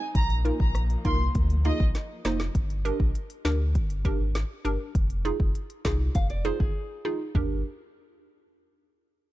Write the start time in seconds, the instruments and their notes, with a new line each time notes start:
Already playing: string section G#3 C4 D#4
0.15 sub bass A#1, string section F3 A#3, violin section A#5, kick, closed hi-hat
0.30 closed hi-hat
0.45 synth pluck A#3 D#4 F4 A#4, closed hi-hat
0.60 sub bass A#1, violin section A#5, kick
0.75 cross-stick, closed hi-hat
0.90 closed hi-hat
1.05 sub bass C2, synth pluck A#3 D#4 F4 A#4, violin section C6, kick, closed hi-hat
1.35 sub bass D2, kick, closed hi-hat
1.50 closed hi-hat
1.65 synth pluck A#3 D#4 F4 G#4, violin section D#5, closed hi-hat
1.80 sub bass A#1, kick
1.95 snare, closed hi-hat
2.25 sub bass F1, synth pluck A#3 D#4 F4 C5, snare, closed hi-hat
2.40 snare
2.55 sub bass G1, kick, closed hi-hat
2.70 closed hi-hat
2.85 synth pluck D4 G4 A#4, closed hi-hat
3.00 sub bass A#1, kick
3.15 closed hi-hat
3.30 closed hi-hat
3.45 sub bass D2, synth pluck D4 G4 A#4, snare, closed hi-hat
3.75 sub bass G1, kick, closed hi-hat
3.90 closed hi-hat
4.05 synth pluck D4 G4 A#4, kick, closed hi-hat
4.20 sub bass G#1
4.35 snare, closed hi-hat
4.65 sub bass G1, synth pluck D4 G4 A#4, closed hi-hat
4.95 sub bass F1, kick, closed hi-hat
5.10 closed hi-hat
5.25 synth pluck D#4 F4 G#4, closed hi-hat
5.40 sub bass F1, kick
5.55 closed hi-hat
5.70 closed hi-hat
5.85 sub bass C2, synth pluck D#4 F4 G#4, kick, snare, closed hi-hat
6.15 sub bass F1, nylon-string guitar F5, kick, closed hi-hat
6.30 nylon-string guitar D5, closed hi-hat
6.45 synth pluck D#4 F4 G#4, nylon-string guitar C5, closed hi-hat
6.60 sub bass G1, nylon-string guitar G#4, kick
7.05 synth pluck D#4 F4 G#4
7.35 sub bass G1, synth pluck D4 G4 A#4, kick, floor tom